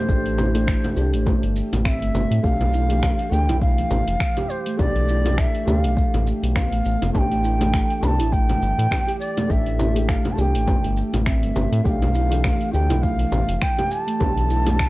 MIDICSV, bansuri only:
0, 0, Header, 1, 2, 480
1, 0, Start_track
1, 0, Key_signature, 0, "minor"
1, 0, Tempo, 588235
1, 73, Time_signature, 4, 2, 24, 8
1, 12151, End_track
2, 0, Start_track
2, 0, Title_t, "Bansuri"
2, 0, Program_c, 0, 73
2, 0, Note_on_c, 0, 72, 95
2, 1233, Note_off_c, 0, 72, 0
2, 1500, Note_on_c, 0, 77, 93
2, 1533, Note_on_c, 0, 76, 101
2, 1541, Note_off_c, 0, 77, 0
2, 1988, Note_on_c, 0, 77, 118
2, 2001, Note_off_c, 0, 76, 0
2, 2707, Note_on_c, 0, 79, 105
2, 2719, Note_off_c, 0, 77, 0
2, 2940, Note_off_c, 0, 79, 0
2, 2945, Note_on_c, 0, 77, 111
2, 3669, Note_on_c, 0, 72, 90
2, 3682, Note_off_c, 0, 77, 0
2, 3908, Note_off_c, 0, 72, 0
2, 3913, Note_on_c, 0, 74, 109
2, 4396, Note_on_c, 0, 76, 102
2, 4408, Note_off_c, 0, 74, 0
2, 4631, Note_on_c, 0, 77, 92
2, 4643, Note_off_c, 0, 76, 0
2, 5112, Note_off_c, 0, 77, 0
2, 5345, Note_on_c, 0, 77, 95
2, 5796, Note_off_c, 0, 77, 0
2, 5824, Note_on_c, 0, 81, 108
2, 5863, Note_on_c, 0, 79, 118
2, 5871, Note_off_c, 0, 81, 0
2, 6554, Note_on_c, 0, 83, 95
2, 6567, Note_off_c, 0, 79, 0
2, 6585, Note_on_c, 0, 81, 104
2, 6594, Note_off_c, 0, 83, 0
2, 6792, Note_on_c, 0, 79, 116
2, 6804, Note_off_c, 0, 81, 0
2, 7501, Note_off_c, 0, 79, 0
2, 7505, Note_on_c, 0, 74, 90
2, 7762, Note_on_c, 0, 76, 108
2, 7774, Note_off_c, 0, 74, 0
2, 8238, Note_on_c, 0, 77, 93
2, 8250, Note_off_c, 0, 76, 0
2, 8423, Note_on_c, 0, 81, 75
2, 8435, Note_off_c, 0, 77, 0
2, 8488, Note_on_c, 0, 79, 88
2, 8500, Note_off_c, 0, 81, 0
2, 8960, Note_off_c, 0, 79, 0
2, 9189, Note_on_c, 0, 76, 87
2, 9668, Note_on_c, 0, 79, 95
2, 9681, Note_off_c, 0, 76, 0
2, 9704, Note_on_c, 0, 77, 104
2, 9713, Note_off_c, 0, 79, 0
2, 10386, Note_off_c, 0, 77, 0
2, 10390, Note_on_c, 0, 79, 98
2, 10627, Note_on_c, 0, 77, 103
2, 10639, Note_off_c, 0, 79, 0
2, 11115, Note_on_c, 0, 79, 105
2, 11128, Note_off_c, 0, 77, 0
2, 11359, Note_on_c, 0, 81, 118
2, 11371, Note_off_c, 0, 79, 0
2, 12151, Note_off_c, 0, 81, 0
2, 12151, End_track
0, 0, End_of_file